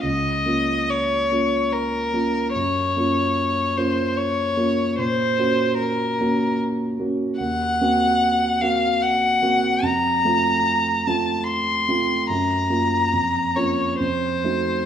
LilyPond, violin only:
\new Staff \with { instrumentName = "Violin" } { \time 3/4 \key ges \lydian \tempo 4 = 73 ees''4 des''4 bes'4 | des''4. c''8 des''4 | c''4 bes'4 r4 | ges''4. f''8 ges''4 |
bes''4. a''8 c'''4 | bes''4. des''8 c''4 | }